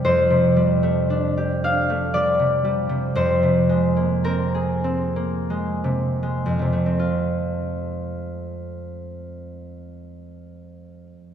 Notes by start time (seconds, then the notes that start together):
Already playing: G3 A3 C4 G4 F5
0.04 F2 C5
0.30 C3
0.56 G3
0.83 A3
1.10 D4
1.37 G4
1.64 D4 F5
1.90 A3
2.14 G3 D5
2.40 C3
2.65 G3
2.89 C3
3.15 F2 C5
3.43 C3
3.69 G#3
3.97 A#3
4.24 C4 A#4
4.55 G#4
4.84 C4
5.16 A#3
5.50 G#3
5.84 C3
6.23 G#3
6.46 F2
6.59 C3
6.73 A3
6.86 C4
6.99 F4